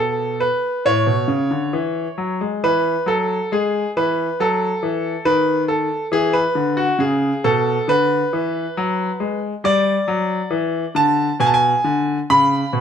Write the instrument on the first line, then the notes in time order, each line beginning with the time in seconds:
grand piano
Already playing: B2 A4
0.40 B4
0.85 A2 C#5
1.07 B2
1.28 C#3
1.51 D3
1.73 E3
2.18 F#3
2.41 G#3
2.64 E3 B4
3.06 F#3 A4
3.52 G#3 G#4
3.97 E3 B4
4.40 F#3 A4
4.83 E3
5.25 D#3 B4
5.68 A4
6.12 E3 G#4
6.33 B4
6.55 D3
6.77 F#4
6.99 C#3 G#4
7.44 B2 A4
7.88 D3 B4
8.33 E3
8.77 F#3
9.20 G#3
9.64 G3 D5
10.08 F#3
10.51 E3
10.95 D3 A5
11.40 B2 G#5
11.46 A5
11.54 G#5
11.84 D3
12.30 C#3 B5
12.73 B2